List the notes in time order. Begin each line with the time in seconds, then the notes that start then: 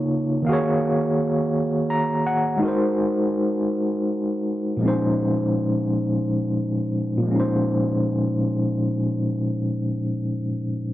Already playing: C#3 A#3 D#4 F4 C#5
0.42 D#3 A#3
0.47 F#4 F5
0.51 G#4 C#5
1.90 A#5
2.27 F#5
2.57 G#3 D#4
2.63 F#4 A#4
2.68 C5
4.77 A#2 F3
4.81 G#3 C4
4.85 D#4 C5
4.90 C#4
7.18 A#2
7.22 F3
7.27 G#3
7.31 C#4
7.35 D#4
7.40 C5